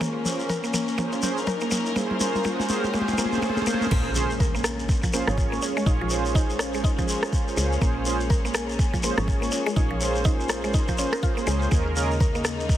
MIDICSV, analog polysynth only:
0, 0, Header, 1, 2, 480
1, 0, Start_track
1, 0, Key_signature, -5, "minor"
1, 0, Tempo, 487805
1, 10, Time_signature, 4, 2, 24, 8
1, 12569, End_track
2, 0, Start_track
2, 0, Title_t, "Analog polysynth"
2, 0, Program_c, 0, 90
2, 11, Note_on_c, 0, 68, 70
2, 12, Note_on_c, 0, 61, 78
2, 12, Note_on_c, 0, 65, 69
2, 13, Note_on_c, 0, 72, 85
2, 212, Note_off_c, 0, 61, 0
2, 212, Note_off_c, 0, 65, 0
2, 212, Note_off_c, 0, 68, 0
2, 213, Note_off_c, 0, 72, 0
2, 250, Note_on_c, 0, 65, 86
2, 250, Note_on_c, 0, 68, 87
2, 250, Note_on_c, 0, 72, 104
2, 251, Note_on_c, 0, 61, 97
2, 393, Note_off_c, 0, 61, 0
2, 393, Note_off_c, 0, 65, 0
2, 393, Note_off_c, 0, 68, 0
2, 393, Note_off_c, 0, 72, 0
2, 969, Note_on_c, 0, 61, 84
2, 969, Note_on_c, 0, 65, 80
2, 969, Note_on_c, 0, 68, 79
2, 970, Note_on_c, 0, 72, 92
2, 1171, Note_off_c, 0, 61, 0
2, 1171, Note_off_c, 0, 65, 0
2, 1171, Note_off_c, 0, 68, 0
2, 1171, Note_off_c, 0, 72, 0
2, 1207, Note_on_c, 0, 72, 108
2, 1208, Note_on_c, 0, 61, 94
2, 1208, Note_on_c, 0, 68, 88
2, 1209, Note_on_c, 0, 65, 85
2, 1352, Note_off_c, 0, 61, 0
2, 1352, Note_off_c, 0, 65, 0
2, 1352, Note_off_c, 0, 68, 0
2, 1352, Note_off_c, 0, 72, 0
2, 1928, Note_on_c, 0, 61, 84
2, 1928, Note_on_c, 0, 68, 78
2, 1929, Note_on_c, 0, 65, 75
2, 1929, Note_on_c, 0, 72, 92
2, 2130, Note_off_c, 0, 61, 0
2, 2130, Note_off_c, 0, 68, 0
2, 2131, Note_off_c, 0, 65, 0
2, 2131, Note_off_c, 0, 72, 0
2, 2166, Note_on_c, 0, 65, 91
2, 2166, Note_on_c, 0, 68, 94
2, 2167, Note_on_c, 0, 61, 100
2, 2167, Note_on_c, 0, 72, 110
2, 2311, Note_off_c, 0, 65, 0
2, 2311, Note_off_c, 0, 68, 0
2, 2311, Note_off_c, 0, 72, 0
2, 2312, Note_off_c, 0, 61, 0
2, 2407, Note_on_c, 0, 61, 89
2, 2407, Note_on_c, 0, 65, 81
2, 2407, Note_on_c, 0, 68, 81
2, 2407, Note_on_c, 0, 72, 94
2, 2610, Note_off_c, 0, 61, 0
2, 2610, Note_off_c, 0, 65, 0
2, 2610, Note_off_c, 0, 68, 0
2, 2610, Note_off_c, 0, 72, 0
2, 2646, Note_on_c, 0, 65, 91
2, 2646, Note_on_c, 0, 68, 91
2, 2646, Note_on_c, 0, 72, 107
2, 2647, Note_on_c, 0, 61, 98
2, 2791, Note_off_c, 0, 61, 0
2, 2791, Note_off_c, 0, 65, 0
2, 2791, Note_off_c, 0, 68, 0
2, 2791, Note_off_c, 0, 72, 0
2, 2887, Note_on_c, 0, 61, 92
2, 2887, Note_on_c, 0, 65, 81
2, 2887, Note_on_c, 0, 68, 84
2, 2888, Note_on_c, 0, 72, 102
2, 3090, Note_off_c, 0, 61, 0
2, 3090, Note_off_c, 0, 65, 0
2, 3090, Note_off_c, 0, 68, 0
2, 3090, Note_off_c, 0, 72, 0
2, 3129, Note_on_c, 0, 61, 90
2, 3129, Note_on_c, 0, 65, 82
2, 3129, Note_on_c, 0, 72, 99
2, 3130, Note_on_c, 0, 68, 79
2, 3331, Note_off_c, 0, 61, 0
2, 3331, Note_off_c, 0, 65, 0
2, 3331, Note_off_c, 0, 68, 0
2, 3331, Note_off_c, 0, 72, 0
2, 3369, Note_on_c, 0, 65, 82
2, 3369, Note_on_c, 0, 68, 80
2, 3369, Note_on_c, 0, 72, 98
2, 3370, Note_on_c, 0, 61, 90
2, 3571, Note_off_c, 0, 61, 0
2, 3571, Note_off_c, 0, 65, 0
2, 3571, Note_off_c, 0, 68, 0
2, 3571, Note_off_c, 0, 72, 0
2, 3611, Note_on_c, 0, 72, 101
2, 3612, Note_on_c, 0, 61, 94
2, 3612, Note_on_c, 0, 65, 83
2, 3612, Note_on_c, 0, 68, 81
2, 3812, Note_off_c, 0, 61, 0
2, 3812, Note_off_c, 0, 68, 0
2, 3812, Note_off_c, 0, 72, 0
2, 3813, Note_off_c, 0, 65, 0
2, 3852, Note_on_c, 0, 61, 86
2, 3853, Note_on_c, 0, 65, 76
2, 3853, Note_on_c, 0, 68, 77
2, 3853, Note_on_c, 0, 72, 94
2, 4053, Note_off_c, 0, 61, 0
2, 4053, Note_off_c, 0, 65, 0
2, 4053, Note_off_c, 0, 68, 0
2, 4053, Note_off_c, 0, 72, 0
2, 4090, Note_on_c, 0, 61, 100
2, 4091, Note_on_c, 0, 65, 94
2, 4091, Note_on_c, 0, 68, 92
2, 4092, Note_on_c, 0, 72, 113
2, 4233, Note_off_c, 0, 61, 0
2, 4233, Note_off_c, 0, 68, 0
2, 4234, Note_off_c, 0, 65, 0
2, 4234, Note_off_c, 0, 72, 0
2, 5049, Note_on_c, 0, 65, 90
2, 5050, Note_on_c, 0, 72, 110
2, 5051, Note_on_c, 0, 61, 99
2, 5052, Note_on_c, 0, 68, 89
2, 5158, Note_off_c, 0, 65, 0
2, 5159, Note_off_c, 0, 61, 0
2, 5159, Note_off_c, 0, 68, 0
2, 5159, Note_off_c, 0, 72, 0
2, 5193, Note_on_c, 0, 65, 79
2, 5193, Note_on_c, 0, 68, 79
2, 5194, Note_on_c, 0, 73, 94
2, 5195, Note_on_c, 0, 61, 82
2, 5747, Note_off_c, 0, 65, 0
2, 5747, Note_off_c, 0, 68, 0
2, 5747, Note_off_c, 0, 73, 0
2, 5748, Note_off_c, 0, 61, 0
2, 5768, Note_on_c, 0, 61, 91
2, 5768, Note_on_c, 0, 68, 86
2, 5769, Note_on_c, 0, 65, 89
2, 5769, Note_on_c, 0, 73, 103
2, 5985, Note_off_c, 0, 61, 0
2, 5986, Note_off_c, 0, 65, 0
2, 5986, Note_off_c, 0, 68, 0
2, 5986, Note_off_c, 0, 73, 0
2, 6008, Note_on_c, 0, 61, 98
2, 6009, Note_on_c, 0, 65, 92
2, 6009, Note_on_c, 0, 68, 91
2, 6009, Note_on_c, 0, 72, 107
2, 7666, Note_off_c, 0, 61, 0
2, 7666, Note_off_c, 0, 65, 0
2, 7666, Note_off_c, 0, 68, 0
2, 7666, Note_off_c, 0, 72, 0
2, 7691, Note_on_c, 0, 61, 84
2, 7691, Note_on_c, 0, 68, 78
2, 7691, Note_on_c, 0, 72, 96
2, 7692, Note_on_c, 0, 65, 77
2, 7892, Note_off_c, 0, 61, 0
2, 7892, Note_off_c, 0, 65, 0
2, 7892, Note_off_c, 0, 68, 0
2, 7892, Note_off_c, 0, 72, 0
2, 7930, Note_on_c, 0, 68, 94
2, 7931, Note_on_c, 0, 61, 107
2, 7931, Note_on_c, 0, 65, 94
2, 7932, Note_on_c, 0, 72, 110
2, 8073, Note_off_c, 0, 61, 0
2, 8073, Note_off_c, 0, 65, 0
2, 8073, Note_off_c, 0, 68, 0
2, 8074, Note_off_c, 0, 72, 0
2, 8887, Note_on_c, 0, 61, 102
2, 8887, Note_on_c, 0, 65, 92
2, 8887, Note_on_c, 0, 72, 111
2, 8888, Note_on_c, 0, 68, 94
2, 8997, Note_off_c, 0, 61, 0
2, 8997, Note_off_c, 0, 65, 0
2, 8997, Note_off_c, 0, 68, 0
2, 8997, Note_off_c, 0, 72, 0
2, 9030, Note_on_c, 0, 61, 84
2, 9031, Note_on_c, 0, 68, 79
2, 9032, Note_on_c, 0, 73, 92
2, 9585, Note_off_c, 0, 61, 0
2, 9586, Note_off_c, 0, 68, 0
2, 9586, Note_off_c, 0, 73, 0
2, 9607, Note_on_c, 0, 65, 88
2, 9607, Note_on_c, 0, 68, 86
2, 9607, Note_on_c, 0, 73, 104
2, 9608, Note_on_c, 0, 61, 94
2, 9825, Note_off_c, 0, 61, 0
2, 9825, Note_off_c, 0, 65, 0
2, 9825, Note_off_c, 0, 68, 0
2, 9825, Note_off_c, 0, 73, 0
2, 9845, Note_on_c, 0, 68, 89
2, 9845, Note_on_c, 0, 72, 109
2, 9846, Note_on_c, 0, 61, 100
2, 9846, Note_on_c, 0, 65, 91
2, 11504, Note_off_c, 0, 68, 0
2, 11504, Note_off_c, 0, 72, 0
2, 11505, Note_off_c, 0, 61, 0
2, 11505, Note_off_c, 0, 65, 0
2, 11527, Note_on_c, 0, 68, 77
2, 11528, Note_on_c, 0, 61, 89
2, 11528, Note_on_c, 0, 65, 80
2, 11528, Note_on_c, 0, 70, 94
2, 11730, Note_off_c, 0, 65, 0
2, 11730, Note_off_c, 0, 68, 0
2, 11730, Note_off_c, 0, 70, 0
2, 11731, Note_off_c, 0, 61, 0
2, 11769, Note_on_c, 0, 68, 98
2, 11770, Note_on_c, 0, 61, 100
2, 11770, Note_on_c, 0, 65, 94
2, 11771, Note_on_c, 0, 70, 110
2, 11912, Note_off_c, 0, 68, 0
2, 11913, Note_off_c, 0, 61, 0
2, 11913, Note_off_c, 0, 65, 0
2, 11913, Note_off_c, 0, 70, 0
2, 12569, End_track
0, 0, End_of_file